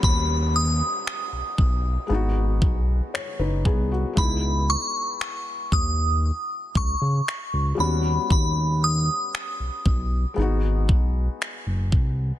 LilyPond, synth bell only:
\new Staff \with { instrumentName = "Synth bell" } { \time 4/4 \key cis \minor \tempo 4 = 58 b''8 dis'''2 r4. | b''8 cis'''4 dis'''4 cis'''4 b''8 | b''8 dis'''2 r4. | }